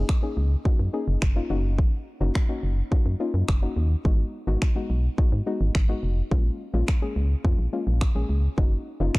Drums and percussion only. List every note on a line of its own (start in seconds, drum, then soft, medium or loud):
0.09 finger snap loud
0.09 kick loud
0.65 kick loud
1.22 finger snap loud
1.22 kick loud
1.79 kick loud
2.35 finger snap loud
2.35 kick loud
2.92 kick loud
3.48 finger snap loud
3.48 kick loud
4.05 kick loud
4.62 finger snap loud
4.62 kick loud
5.18 kick loud
5.75 finger snap loud
5.75 kick loud
6.31 kick loud
6.88 finger snap loud
6.88 kick loud
7.45 kick loud
8.01 finger snap loud
8.01 kick loud
8.58 kick loud
9.15 finger snap loud
9.15 kick loud